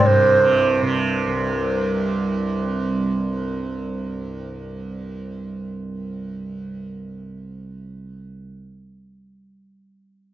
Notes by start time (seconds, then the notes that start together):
Already playing: C2 G2 C3
0.00 D5
0.06 C5
0.38 C3
0.82 C3
1.27 C2